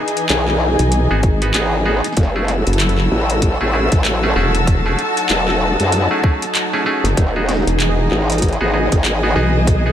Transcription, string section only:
Already playing: E3 D#5 G#5
2.17 F#4
2.25 E6
3.34 A5
7.17 E3
7.27 D#5
8.14 G#5

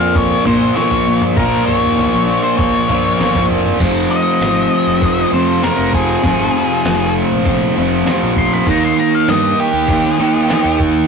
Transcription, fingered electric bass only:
Already playing: F2
0.46 A#2
1.07 A#2
1.37 A#2
1.83 D#2
2.14 A#1
3.20 G1
3.50 F1
3.80 F1
4.41 G#1
4.87 F1
5.32 F2
5.78 F1
6.24 G#1
6.85 F1
7.32 A#1
7.78 F1
8.22 A#1
8.67 D#2
9.28 G2
9.73 D#2
10.19 D#3
10.65 D#2

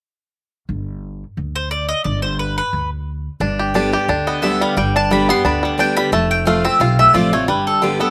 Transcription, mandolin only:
1.56 C5
1.71 D5
1.89 D#5
2.04 D5
2.22 C5
2.39 B4
2.58 B4
4.27 D#5
4.42 E5
4.62 F5
4.77 G5
4.96 A5
5.13 B5
5.30 C6
5.46 B5
5.65 D5
5.80 G5
5.97 B5
6.13 A5
6.31 G5
6.47 F5
6.65 E5
6.81 F5
6.99 E5
7.15 D5
7.33 C#5
7.49 B4
7.67 A4
7.83 F4
8.01 A4

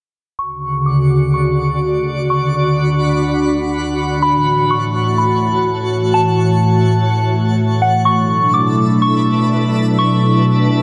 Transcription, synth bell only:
0.39 C#6
0.86 D6
1.34 C#6
2.30 C#6
4.22 B5
4.71 C#6
5.18 B5
6.14 A5
7.82 F#5
8.05 C#6
8.54 D6
9.02 C#6
9.99 C#6

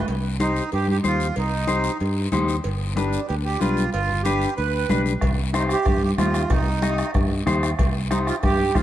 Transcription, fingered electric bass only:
0.09 C2
0.73 G2
1.05 D#2
1.37 C2
2.01 G2
2.33 D#2
2.65 G1
3.30 D2
3.61 B1
3.94 G1
4.58 D2
4.90 B1
5.22 C2
5.86 G2
6.18 D#2
6.51 C2
7.15 G2
7.47 D#2
7.79 C2
8.43 G2
8.75 D#2

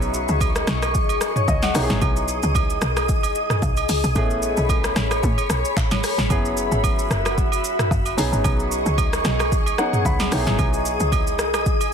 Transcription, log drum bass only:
Already playing: B1
0.29 C#2
0.68 B1
1.48 C#2
1.75 B1
1.90 G#1
2.02 B1
2.43 C#2
2.82 B1
3.62 B1
3.89 C#2
4.04 B1
4.16 A1
4.57 B1
4.96 A1
5.23 A2
5.50 B1
5.77 A1
5.91 G#1
6.18 A1
6.30 F#1
6.72 G#1
7.11 F#1
7.91 F#1
8.18 B1
8.32 G#1
8.45 B1
8.86 C#2
9.25 B1
10.05 C#2
10.32 B1
10.47 G#1
10.59 B1
11.00 C#2
11.39 B1

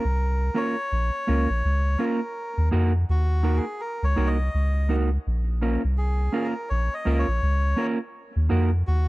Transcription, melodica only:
Already playing: A#4
0.57 C#5
2.03 A#4
3.10 F#4
3.57 G#4
3.80 A#4
4.04 C#5
4.27 D#5
5.98 G#4
6.43 A#4
6.69 C#5
6.94 D#5
7.19 C#5
8.87 F#4

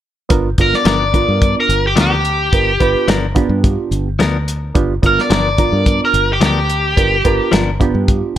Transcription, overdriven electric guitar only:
0.61 A#4
0.75 D5
1.60 A#4
1.87 G4
2.02 G4
5.06 A#4
5.21 D5
6.05 A#4
6.33 G4
6.46 G4

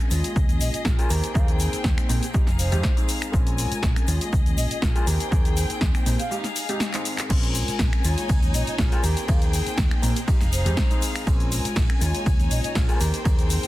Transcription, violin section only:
Already playing: A#4 G#5
0.11 G#4 D#5
1.10 C4 G#4 G5
2.34 D#4 G#4 F5
3.33 A#4 G#5
4.08 G#4 D#5
5.07 C4 G5
6.31 D#4 G#4 F5
7.30 A#4 G#5
8.04 D#4 C#5
9.04 C4 G#4 G5
10.27 D#4 G#4 F5
11.27 A#4 G#5
12.01 D#4 C#5
13.01 C4 C5 G5

